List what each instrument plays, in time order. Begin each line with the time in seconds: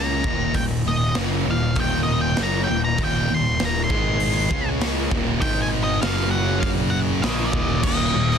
Already playing: picked electric bass C#2, distorted electric guitar C#3 G#3 C#4, lead electric guitar A#5
0.24 picked electric bass D#1, distorted electric guitar D#2 A#2 D#3, kick
0.54 picked electric bass D#1, distorted electric guitar D#2 A#2, lead electric guitar G5, kick, open hi-hat
0.85 picked electric bass D#1, distorted electric guitar D#2 A#2, lead electric guitar D#5
1.15 picked electric bass F#1, distorted electric guitar F#2 C#3 F#3, snare, open hi-hat
1.46 picked electric bass D#1, distorted electric guitar D#2 A#2
1.51 lead electric guitar F5
1.75 picked electric bass D#1, distorted electric guitar D#2 A#2, kick, open hi-hat
1.80 distorted electric guitar D#3, lead electric guitar G5
2.03 lead electric guitar D#5
2.21 lead electric guitar G5
2.37 picked electric bass F#1, distorted electric guitar F#2 C#3 F#3, snare, open hi-hat
2.43 lead electric guitar A#5
2.64 lead electric guitar G5
2.70 picked electric bass D#1, distorted electric guitar D#2 A#2
2.85 lead electric guitar A#5
2.98 picked electric bass D#1, distorted electric guitar D#2 A#2 D#3, kick, open hi-hat
3.04 lead electric guitar G5
3.30 picked electric bass D#1, distorted electric guitar D#2 A#2
3.34 lead electric guitar C6
3.59 picked electric bass D#1, distorted electric guitar D#2 A#2, snare, open hi-hat
3.65 lead electric guitar A#5
3.84 lead electric guitar C6
3.90 picked electric bass G#1, distorted electric guitar G#2 D#3 G#3, kick
4.20 open hi-hat
4.50 picked electric bass C#2, distorted electric guitar C#3 G#3 C#4, kick
4.81 snare, open hi-hat
5.11 picked electric bass D#1, distorted electric guitar D#2 A#2 D#3, kick
5.41 picked electric bass G#1, distorted electric guitar G#2 D#3 G#3, lead electric guitar G5, kick, open hi-hat
5.62 lead electric guitar G#5
5.83 lead electric guitar D#5
6.01 picked electric bass F#1, distorted electric guitar F#2 C#3 F#3, lead electric guitar F5, snare, open hi-hat
6.31 lead electric guitar F#5
6.60 lead electric guitar F5, kick, open hi-hat
6.90 lead electric guitar F#5
7.22 picked electric bass A#1, distorted electric guitar A#2 F3 A#3, lead electric guitar C#5 F5, snare, open hi-hat
7.45 lead electric guitar D#5
7.53 picked electric bass D#1, distorted electric guitar D#2 A#2 D#3, kick
7.83 picked electric bass D#1, distorted electric guitar D#2 A#2 D#3, lead electric guitar D#5, kick, crash
8.14 picked electric bass D#1, distorted electric guitar D#2 A#2
8.31 snare